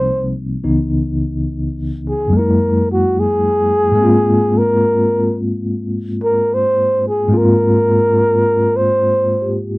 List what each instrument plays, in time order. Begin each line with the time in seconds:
Already playing: tine electric piano C2 C3 F3 G3 A#3 C4 D#4, flugelhorn C5
0.64 tine electric piano C#2 C#3 E3 B3 D#4
2.08 flugelhorn G#4
2.28 tine electric piano F#2 F#3
2.33 tine electric piano G#3 A#3, flugelhorn A#4
2.39 tine electric piano E4
2.92 flugelhorn F#4
3.20 flugelhorn G#4
3.92 tine electric piano G#2 G#3
3.97 tine electric piano A#3 C4
4.03 tine electric piano F4
4.58 flugelhorn A#4
6.24 flugelhorn A#4
6.54 flugelhorn C5
7.08 flugelhorn G#4
7.28 tine electric piano G#2 G#3 A#3
7.33 tine electric piano C4 F4
7.37 flugelhorn A#4
8.76 flugelhorn C5
9.42 tine electric piano G4